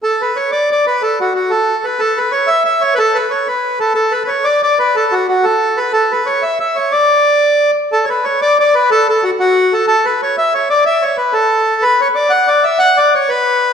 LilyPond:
\new Staff \with { instrumentName = "Accordion" } { \time 6/8 \key d \major \tempo 4. = 122 a'8 b'8 cis''8 d''8 d''8 b'8 | a'8 fis'8 fis'8 a'4 b'8 | a'8 b'8 cis''8 e''8 e''8 cis''16. b'32 | a'8 b'8 cis''8 b'4 a'8 |
a'8 b'16. b'32 cis''8 d''8 d''8 b'8 | a'8 fis'8 fis'8 a'4 b'8 | a'8 b'8 cis''8 e''8 e''8 cis''8 | d''2~ d''8 r8 |
a'16. cis''32 b'8 cis''8 d''8 d''8 b'8 | a'8 a'8 fis'8 fis'4 a'8 | a'8 b'8 cis''8 e''8 cis''8 d''8 | e''8 cis''8 b'8 a'4. |
b'8 cis''8 d''8 fis''8 d''8 e''8 | fis''8 d''8 cis''8 b'4. | }